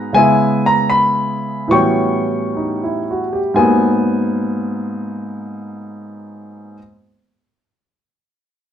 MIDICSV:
0, 0, Header, 1, 2, 480
1, 0, Start_track
1, 0, Key_signature, 5, "minor"
1, 0, Tempo, 749064
1, 99, Time_signature, 4, 2, 24, 8
1, 582, Tempo, 803213
1, 1062, Tempo, 872093
1, 1542, Tempo, 967742
1, 3462, Tempo, 985222
1, 4569, End_track
2, 0, Start_track
2, 0, Title_t, "Grand piano"
2, 0, Program_c, 0, 0
2, 0, Note_on_c, 0, 44, 54
2, 0, Note_on_c, 0, 54, 52
2, 0, Note_on_c, 0, 56, 51
2, 0, Note_on_c, 0, 59, 58
2, 0, Note_on_c, 0, 71, 56
2, 0, Note_on_c, 0, 82, 79
2, 76, Note_off_c, 0, 71, 0
2, 79, Note_off_c, 0, 44, 0
2, 80, Note_off_c, 0, 56, 0
2, 83, Note_on_c, 0, 49, 55
2, 89, Note_on_c, 0, 56, 53
2, 92, Note_off_c, 0, 54, 0
2, 92, Note_off_c, 0, 59, 0
2, 93, Note_on_c, 0, 80, 86
2, 101, Note_on_c, 0, 59, 51
2, 103, Note_on_c, 0, 76, 60
2, 109, Note_off_c, 0, 82, 0
2, 115, Note_on_c, 0, 64, 61
2, 402, Note_off_c, 0, 80, 0
2, 425, Note_on_c, 0, 82, 85
2, 569, Note_off_c, 0, 82, 0
2, 574, Note_on_c, 0, 83, 86
2, 1034, Note_off_c, 0, 83, 0
2, 1040, Note_off_c, 0, 76, 0
2, 1042, Note_on_c, 0, 45, 49
2, 1050, Note_on_c, 0, 52, 45
2, 1054, Note_off_c, 0, 49, 0
2, 1058, Note_off_c, 0, 56, 0
2, 1058, Note_off_c, 0, 59, 0
2, 1058, Note_on_c, 0, 54, 43
2, 1061, Note_on_c, 0, 85, 82
2, 1064, Note_on_c, 0, 55, 43
2, 1067, Note_on_c, 0, 59, 44
2, 1069, Note_off_c, 0, 64, 0
2, 1069, Note_on_c, 0, 79, 58
2, 1074, Note_on_c, 0, 61, 54
2, 1532, Note_on_c, 0, 63, 40
2, 1668, Note_on_c, 0, 64, 43
2, 1761, Note_off_c, 0, 63, 0
2, 1802, Note_on_c, 0, 66, 42
2, 1845, Note_off_c, 0, 85, 0
2, 1871, Note_off_c, 0, 64, 0
2, 1911, Note_on_c, 0, 67, 46
2, 1938, Note_off_c, 0, 66, 0
2, 2002, Note_off_c, 0, 79, 0
2, 2010, Note_off_c, 0, 45, 0
2, 2013, Note_off_c, 0, 52, 0
2, 2016, Note_off_c, 0, 54, 0
2, 2017, Note_on_c, 0, 44, 58
2, 2019, Note_off_c, 0, 55, 0
2, 2020, Note_off_c, 0, 59, 0
2, 2024, Note_off_c, 0, 61, 0
2, 2024, Note_on_c, 0, 54, 50
2, 2026, Note_on_c, 0, 80, 70
2, 2030, Note_on_c, 0, 58, 52
2, 2032, Note_on_c, 0, 59, 60
2, 2077, Note_off_c, 0, 67, 0
2, 3602, Note_off_c, 0, 80, 0
2, 3613, Note_off_c, 0, 44, 0
2, 3619, Note_off_c, 0, 54, 0
2, 3625, Note_off_c, 0, 58, 0
2, 3627, Note_off_c, 0, 59, 0
2, 4569, End_track
0, 0, End_of_file